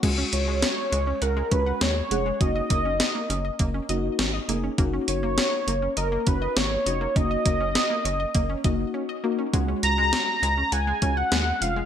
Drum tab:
CC |x-------|--------|--------|--------|
HH |xxxxxxxx|xxxxxxxx|xxxxxxxx|xxxxxx--|
SD |--o---o-|--o---o-|--o---o-|--o-----|
BD |o----o--|oo--o---|o----o--|oo--oo--|

CC |--------|
HH |xxxxxxxx|
SD |--o---o-|
BD |o----o--|